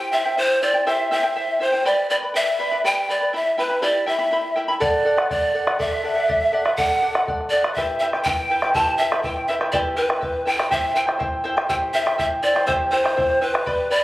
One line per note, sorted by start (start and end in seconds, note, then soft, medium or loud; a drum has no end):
0.00 0.12 E4 medium
0.00 0.12 G4 medium
0.00 0.13 C5 medium
0.00 0.11 E5 medium
0.00 0.11 G5 medium
0.00 0.13 G5 medium
0.12 0.25 E4 soft
0.12 0.25 C5 medium
0.12 0.35 E5 medium
0.12 0.25 E5 medium
0.12 0.24 G5 medium
0.25 0.37 E4 soft
0.25 0.37 C5 soft
0.25 0.37 G5 soft
0.37 0.61 E4 soft
0.37 0.64 C5 medium
0.37 0.62 C5 medium
0.37 0.61 E5 soft
0.37 0.62 G5 medium
0.62 0.74 E4 soft
0.62 0.73 C5 medium
0.62 0.89 D5 medium
0.62 0.74 E5 soft
0.62 0.73 G5 medium
0.74 0.86 E4 soft
0.74 0.86 C5 soft
0.74 0.86 G5 soft
0.87 1.10 E4 medium
0.87 1.11 G4 medium
0.87 1.11 C5 medium
0.87 1.10 E5 medium
0.87 1.11 E5 medium
0.87 1.11 G5 medium
1.11 1.24 E4 medium
1.11 1.23 C5 medium
1.11 1.23 E5 medium
1.11 1.64 E5 medium
1.11 1.22 G5 medium
1.23 1.35 E4 soft
1.23 1.35 C5 soft
1.23 1.36 G5 soft
1.36 1.59 E4 soft
1.36 1.60 C5 soft
1.36 1.59 E5 medium
1.36 1.60 G5 medium
1.60 1.72 E4 soft
1.60 1.72 C5 medium
1.60 1.86 C5 medium
1.60 1.73 E5 medium
1.60 1.71 G5 medium
1.72 1.85 E4 soft
1.72 1.85 C5 soft
1.72 1.84 G5 soft
1.85 2.10 G4 medium
1.85 2.10 B4 medium
1.85 2.10 D5 medium
1.85 2.09 D5 medium
1.85 2.09 G5 medium
1.85 2.10 B5 medium
2.10 2.22 B4 medium
2.10 2.16 D5 medium
2.10 2.22 D5 medium
2.10 2.22 G5 soft
2.10 2.21 B5 medium
2.22 2.34 B4 soft
2.22 2.34 D5 soft
2.22 2.34 B5 soft
2.34 2.58 B4 medium
2.34 2.59 D5 medium
2.34 2.81 E5 medium
2.34 2.58 G5 medium
2.34 2.59 B5 medium
2.59 2.72 B4 medium
2.59 2.71 D5 medium
2.59 2.71 G5 medium
2.59 2.70 B5 medium
2.71 2.84 B4 soft
2.71 2.84 D5 soft
2.71 2.84 B5 soft
2.84 3.09 G4 medium
2.84 3.08 B4 medium
2.84 3.09 D5 medium
2.84 3.07 G5 medium
2.84 3.12 G5 medium
2.84 3.09 B5 medium
3.09 3.21 B4 medium
3.09 3.21 D5 medium
3.09 3.37 D5 medium
3.09 3.21 G5 medium
3.09 3.20 B5 medium
3.21 3.33 B4 soft
3.21 3.33 D5 soft
3.21 3.33 B5 soft
3.33 3.57 E4 medium
3.33 3.57 E5 medium
3.33 3.60 E5 medium
3.33 3.56 G5 soft
3.33 3.58 B5 medium
3.58 3.70 E4 medium
3.58 3.84 B4 medium
3.58 3.69 E5 medium
3.58 3.70 G5 soft
3.58 3.68 B5 medium
3.70 3.81 E4 soft
3.70 3.81 E5 soft
3.70 3.81 B5 soft
3.82 4.06 E4 medium
3.82 4.07 G4 medium
3.82 4.07 D5 medium
3.82 4.06 E5 medium
3.82 4.05 G5 medium
3.82 4.07 B5 medium
4.06 4.19 E4 medium
4.06 4.18 E5 medium
4.06 4.59 E5 medium
4.06 4.19 G5 medium
4.06 4.17 B5 medium
4.19 4.31 E4 soft
4.19 4.32 E5 soft
4.19 4.31 B5 medium
4.32 4.55 E4 soft
4.32 4.56 E5 soft
4.32 4.54 G5 soft
4.32 4.56 B5 medium
4.56 4.69 E4 medium
4.56 4.68 E5 medium
4.56 4.68 G5 soft
4.56 4.67 B5 medium
4.68 4.81 E4 soft
4.68 4.80 E5 soft
4.68 4.81 B5 medium
4.80 5.04 A4 medium
4.80 5.05 D5 medium
4.80 5.27 D5 medium
4.80 5.05 F#5 medium
4.80 bombo low medium
5.05 5.18 A4 medium
5.05 5.18 D5 medium
5.05 5.16 F#5 medium
5.17 5.29 D5 soft
5.17 5.30 F#5 medium
5.17 bombo rim soft
5.29 5.53 A4 medium
5.29 5.54 D5 medium
5.29 5.81 D5 medium
5.29 5.54 F#5 medium
5.29 bombo rim soft
5.29 bombo low medium
5.54 5.67 A4 medium
5.54 5.67 D5 medium
5.54 5.66 F#5 medium
5.67 5.78 D5 soft
5.67 5.79 F#5 soft
5.67 bombo rim medium
5.79 6.02 A4 medium
5.79 6.03 D5 medium
5.79 6.76 E5 loud
5.79 6.04 F#5 medium
5.79 bombo low medium
5.93 bombo rim soft
6.04 6.16 A4 soft
6.04 6.16 D5 medium
6.04 6.15 F#5 medium
6.16 6.27 D5 soft
6.16 6.28 F#5 medium
6.28 6.51 A4 medium
6.28 6.52 D5 medium
6.28 6.53 F#5 medium
6.28 bombo low medium
6.52 6.65 A4 medium
6.52 6.65 D5 medium
6.52 6.64 F#5 medium
6.65 6.77 D5 soft
6.65 6.77 F#5 soft
6.65 bombo rim medium
6.77 7.01 A4 medium
6.77 7.02 D5 medium
6.77 7.23 F#5 loud
6.77 7.03 F#5 medium
6.77 bombo low medium
7.02 7.15 A4 medium
7.02 7.15 D5 medium
7.02 7.14 F#5 medium
7.15 7.27 D5 soft
7.15 7.27 F#5 medium
7.15 bombo rim medium
7.27 7.50 A4 soft
7.27 7.52 D5 medium
7.27 7.52 F#5 medium
7.27 bombo low medium
7.41 bombo rim soft
7.50 7.64 A4 medium
7.50 7.73 D5 medium
7.50 7.64 D5 medium
7.50 7.63 F#5 medium
7.64 7.77 D5 soft
7.64 7.77 F#5 medium
7.64 bombo rim medium
7.74 8.01 E4 medium
7.74 8.01 G4 medium
7.74 8.01 B4 medium
7.74 7.98 E5 medium
7.74 8.00 E5 medium
7.74 8.01 G5 medium
7.74 bombo low medium
7.99 8.14 E4 medium
7.99 8.14 B4 soft
7.99 8.05 E5 medium
7.99 8.13 E5 medium
7.99 8.13 G5 medium
8.13 8.26 E4 soft
8.13 8.26 B4 soft
8.13 8.26 G5 medium
8.13 bombo rim soft
8.24 8.49 E4 medium
8.24 8.50 B4 medium
8.24 8.49 E5 medium
8.24 8.71 G5 loud
8.24 8.50 G5 medium
8.24 bombo rim soft
8.24 bombo low medium
8.50 8.63 E4 medium
8.50 8.62 B4 medium
8.50 8.62 E5 medium
8.50 8.62 G5 medium
8.62 8.75 E4 soft
8.62 8.75 B4 soft
8.62 8.75 G5 medium
8.62 bombo rim medium
8.74 8.99 E4 medium
8.74 9.00 G4 medium
8.74 9.00 B4 medium
8.74 8.98 E5 medium
8.74 9.00 G5 medium
8.74 8.97 A5 loud
8.74 bombo low medium
8.87 bombo rim soft
8.98 9.12 E4 medium
8.98 9.12 B4 medium
8.98 9.24 E5 medium
8.98 9.12 E5 medium
8.98 9.11 G5 medium
9.12 9.24 E4 soft
9.12 9.24 B4 medium
9.12 9.24 G5 soft
9.12 bombo rim medium
9.23 9.48 E4 medium
9.23 9.49 B4 medium
9.23 9.48 E5 medium
9.23 9.47 G5 medium
9.23 9.49 G5 medium
9.23 bombo rim soft
9.23 bombo low medium
9.37 bombo rim soft
9.48 9.61 E4 medium
9.48 9.60 B4 medium
9.48 9.54 E5 medium
9.48 9.61 E5 medium
9.48 9.59 G5 medium
9.61 9.73 E4 soft
9.61 9.73 B4 soft
9.61 9.73 G5 soft
9.61 bombo rim soft
9.72 9.96 E4 medium
9.72 9.98 G4 medium
9.72 9.96 B4 medium
9.72 9.78 D5 medium
9.72 9.95 E5 medium
9.72 9.97 G5 medium
9.72 bombo rim soft
9.72 bombo low medium
9.96 10.10 E4 soft
9.96 10.43 B4 medium
9.96 10.09 B4 medium
9.96 10.09 E5 medium
9.96 10.08 G5 medium
10.09 10.20 E4 soft
10.09 10.21 B4 soft
10.09 10.21 G5 soft
10.09 bombo rim medium
10.21 10.45 E4 soft
10.21 10.45 B4 medium
10.21 10.44 E5 soft
10.21 10.46 G5 soft
10.21 bombo low medium
10.45 10.59 E4 medium
10.45 10.59 B4 soft
10.45 10.58 E5 soft
10.45 10.70 G5 medium
10.45 10.58 G5 medium
10.45 bombo rim soft
10.59 10.70 E4 soft
10.59 10.71 B4 soft
10.59 10.70 G5 soft
10.59 bombo rim medium
10.71 10.94 E4 medium
10.71 10.96 G4 medium
10.71 10.94 C5 medium
10.71 10.93 E5 medium
10.71 10.94 E5 medium
10.71 10.95 G5 medium
10.71 bombo low medium
10.95 11.07 E4 medium
10.95 11.06 C5 medium
10.95 11.08 E5 medium
10.95 11.02 G5 medium
10.95 11.06 G5 medium
11.07 11.19 E4 soft
11.07 11.19 C5 soft
11.07 11.19 G5 soft
11.07 bombo rim soft
11.19 11.43 E4 medium
11.19 11.44 C5 medium
11.19 11.43 E5 medium
11.19 11.44 G5 medium
11.19 bombo rim soft
11.19 bombo low medium
11.44 11.57 E4 medium
11.44 11.56 C5 medium
11.44 11.57 E5 medium
11.44 11.55 G5 medium
11.57 11.68 E4 soft
11.57 11.68 C5 soft
11.57 11.68 G5 soft
11.57 bombo rim soft
11.69 11.93 E4 medium
11.69 11.94 G4 medium
11.69 11.93 C5 medium
11.69 11.92 E5 medium
11.69 11.76 G5 loud
11.69 11.94 G5 medium
11.69 bombo low medium
11.82 bombo rim soft
11.93 12.06 E4 medium
11.93 12.05 C5 medium
11.93 12.06 E5 medium
11.93 12.17 E5 medium
11.93 12.05 G5 medium
12.06 12.17 E4 soft
12.06 12.18 C5 soft
12.06 12.18 G5 soft
12.06 bombo rim medium
12.18 12.42 E4 medium
12.18 12.42 C5 medium
12.18 12.42 E5 medium
12.18 12.25 E5 medium
12.18 12.43 G5 medium
12.18 bombo low medium
12.43 12.55 E4 medium
12.43 12.54 C5 medium
12.43 12.66 D5 medium
12.43 12.55 E5 soft
12.43 12.54 G5 medium
12.55 12.66 E4 soft
12.55 12.66 C5 medium
12.55 12.66 G5 soft
12.55 bombo rim soft
12.67 12.91 E4 medium
12.67 12.92 G4 medium
12.67 12.73 C5 medium
12.67 12.91 C5 medium
12.67 12.90 E5 medium
12.67 12.91 G5 medium
12.67 bombo rim soft
12.67 bombo low medium
12.91 13.04 E4 medium
12.91 13.43 C5 medium
12.91 13.04 C5 medium
12.91 13.04 E5 medium
12.91 13.03 G5 medium
13.04 13.16 E4 soft
13.04 13.16 C5 soft
13.04 13.16 G5 medium
13.04 bombo rim soft
13.17 13.41 E4 medium
13.17 13.41 C5 medium
13.17 13.40 E5 soft
13.17 13.41 G5 medium
13.17 bombo low medium
13.30 bombo rim soft
13.41 13.54 E4 medium
13.41 13.92 B4 medium
13.41 13.53 C5 medium
13.41 13.54 E5 medium
13.41 13.53 G5 medium
13.54 13.66 E4 soft
13.54 13.67 C5 soft
13.54 13.65 G5 soft
13.54 bombo rim medium
13.66 13.91 G4 medium
13.66 13.90 B4 medium
13.66 13.90 D5 medium
13.66 13.89 G5 medium
13.66 13.91 B5 medium
13.66 bombo low medium
13.90 14.03 B4 medium
13.90 14.04 D5 medium
13.90 14.03 D5 medium
13.90 14.03 G5 medium
13.90 14.03 B5 medium